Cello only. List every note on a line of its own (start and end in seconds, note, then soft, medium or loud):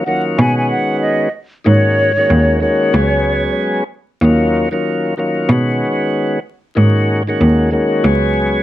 0.39 0.63 B2 loud
1.66 2.15 G#2 loud
2.30 2.54 D#2 medium
2.94 3.42 C#2 loud
4.22 4.60 D#2 loud
5.49 5.73 B2 loud
6.77 7.25 G#2 loud
7.41 7.65 D#2 medium
8.05 8.53 C#2 loud